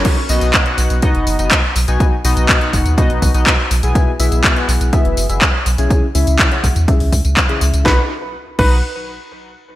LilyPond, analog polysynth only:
\new Staff \with { instrumentName = "Analog polysynth" } { \time 4/4 \key b \major \tempo 4 = 123 r8 <b, b dis' fis' dis''>8. <b, b dis' fis' fis''>8. <b, b dis' fis' dis''>8. <b, b dis' fis' dis''>16 r8. <b, b dis' fis' gis''>16~ | <b, b dis' fis' gis''>16 r16 <b, b dis' fis' dis''>8. <b, b dis' fis' fis''>8. <b, b dis' fis' dis''>8. <b, b dis' fis' dis''>16 r8. <b, b e' gis' gis''>16~ | <b, b e' gis' gis''>16 r16 <b, b e' gis' e''>8. <b, b e' gis' fis''>8. <b, b e' gis' e''>8. <b, b e' gis' e''>16 r8. <cis cis' e' gis' gis''>16~ | <cis cis' e' gis' gis''>16 r16 <cis cis' e' gis' e''>8. <cis cis' e' gis' fis''>8. <cis cis' e' gis' e''>8. r8 <cis cis' e' gis' e''>8. |
<dis' fis' b' fis''>16 r4 r16 <dis' fis' b' fis''>8 r2 | }